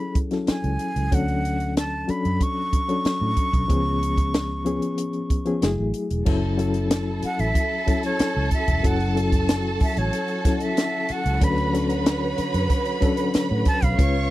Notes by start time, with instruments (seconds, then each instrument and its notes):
Already playing: reed electric piano F#3 C#4 E4 G#4 A4, flute B5
0.15 kick, closed hi-hat
0.31 reed electric piano F#3 C#4 E4 A4, snare, closed hi-hat
0.47 flute G#5, muted fingered electric bass stroke, snare, closed hi-hat
0.64 fingered electric bass C#2, closed hi-hat
0.79 closed hi-hat
0.96 fingered electric bass C#2, closed hi-hat
1.11 fingered electric bass D2, reed electric piano F#3 C#4 D4 A4, flute F#5, kick, closed hi-hat
1.28 closed hi-hat
1.45 closed hi-hat
1.60 closed hi-hat
1.77 flute A5, snare, closed hi-hat
2.08 reed electric piano F#3 C#4 D4 A4, flute B5, muted fingered electric bass stroke, closed hi-hat
2.25 fingered electric bass F#2, closed hi-hat
2.40 flute C#6, kick, closed hi-hat
2.73 kick, closed hi-hat
2.89 reed electric piano F#3 C#4 D4 A4, closed hi-hat
3.05 muted fingered electric bass stroke, snare, closed hi-hat
3.21 fingered electric bass A2
3.37 kick, closed hi-hat
3.53 fingered electric bass B1, kick, closed hi-hat
3.68 fingered electric bass C#2, reed electric piano F3 B3 C#4 G#4, kick, closed hi-hat
4.03 closed hi-hat
4.17 kick, closed hi-hat
4.34 snare, closed hi-hat
4.65 reed electric piano F3 B3 C#4 G#4, closed hi-hat
4.82 closed hi-hat
4.98 closed hi-hat
5.13 closed hi-hat
5.30 kick, closed hi-hat
5.45 reed electric piano F3 B3 C#4 G#4, closed hi-hat
5.62 fingered electric bass F#1, reed electric piano F#3 A3 E4 G#4, snare, closed hi-hat
5.79 fingered electric bass A1
5.94 closed hi-hat
6.11 fingered electric bass E1, closed hi-hat
6.25 fingered electric bass F#1, reed electric piano F#3 C#4 E4 A4, string section F#3 E4 A4, violin section A4 A5, kick, crash
6.58 reed electric piano F#3 C#4 E4 A4, closed hi-hat
6.74 closed hi-hat
6.91 snare, closed hi-hat
7.22 flute F#5, muted fingered electric bass stroke, closed hi-hat
7.39 fingered electric bass A1, flute E5, closed hi-hat
7.55 kick, closed hi-hat
7.87 reed electric piano F#3 C#4 E4 A4, kick, closed hi-hat
8.03 flute C#5, closed hi-hat
8.19 muted fingered electric bass stroke, snare, closed hi-hat
8.37 fingered electric bass C#2
8.51 flute E5, kick, closed hi-hat
8.68 fingered electric bass E1, kick, closed hi-hat
8.83 fingered electric bass F#1, reed electric piano F#3 C#4 E4 A4, string section F#4, flute F#5, kick, closed hi-hat
9.00 closed hi-hat
9.15 reed electric piano F#3 C#4 E4 A4, closed hi-hat
9.32 kick, closed hi-hat
9.49 snare, closed hi-hat
9.80 flute E5, muted fingered electric bass stroke, kick, open hi-hat
9.97 fingered electric bass A1, flute C#5, closed hi-hat
10.13 closed hi-hat
10.28 closed hi-hat
10.45 reed electric piano F#3 C#4 E4 A4, kick, snare, closed hi-hat
10.60 flute E5, closed hi-hat
10.77 snare, closed hi-hat
11.09 flute F#5, muted fingered electric bass stroke, closed hi-hat
11.26 fingered electric bass C#2, closed hi-hat
11.41 fingered electric bass D2, string section D3 C#5, reed electric piano F#3 C#4 D4 A4, violin section B4 B5, flute B5, kick, closed hi-hat
11.58 closed hi-hat
11.73 reed electric piano F#3 C#4 D4 A4, closed hi-hat
11.90 closed hi-hat
12.06 snare, closed hi-hat
12.38 muted fingered electric bass stroke, closed hi-hat
12.54 fingered electric bass F#2, closed hi-hat
12.70 kick, closed hi-hat
12.85 closed hi-hat
13.01 reed electric piano F#3 C#4 D4 A4, kick, closed hi-hat
13.17 closed hi-hat
13.34 muted fingered electric bass stroke, snare, closed hi-hat
13.51 fingered electric bass A2
13.65 flute A5, kick, closed hi-hat
13.82 fingered electric bass B1, flute F5, kick, closed hi-hat
13.98 fingered electric bass C#2, string section C#3 B3 F4, reed electric piano G#3 C#4 F4 B4, violin section C#5 C#6, kick, closed hi-hat